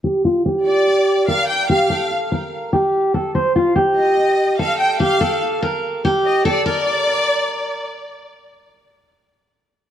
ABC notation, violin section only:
X:1
M:4/4
L:1/8
Q:1/4=145
K:Bb
V:1 name="Violin section"
z3 d3 f g | f2 z6 | z3 e3 f g | f2 z4 e d |
d6 z2 | z8 |]